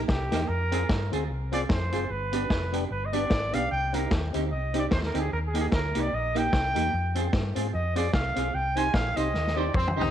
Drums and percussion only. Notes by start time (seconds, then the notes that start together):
0.08 kick, snare
0.32 snare, closed hi-hat
0.72 closed hi-hat
0.89 kick, snare
1.13 closed hi-hat
1.52 closed hi-hat
1.69 kick, snare
1.92 closed hi-hat
2.33 closed hi-hat
2.50 kick, snare
2.73 closed hi-hat
3.13 closed hi-hat
3.30 kick, snare
3.53 closed hi-hat
3.94 closed hi-hat
4.11 kick, snare
4.34 closed hi-hat
4.74 closed hi-hat
4.91 kick, snare
5.03 snare
5.15 closed hi-hat
5.55 closed hi-hat
5.72 kick, snare
5.95 closed hi-hat
6.36 closed hi-hat
6.53 kick, snare
6.76 closed hi-hat
7.15 closed hi-hat
7.33 kick, snare
7.56 closed hi-hat
7.96 closed hi-hat
8.13 kick, snare
8.36 closed hi-hat
8.77 closed hi-hat
8.94 kick, snare
9.17 closed hi-hat
9.34 snare
9.47 snare
9.74 kick
9.87 floor tom
10.01 floor tom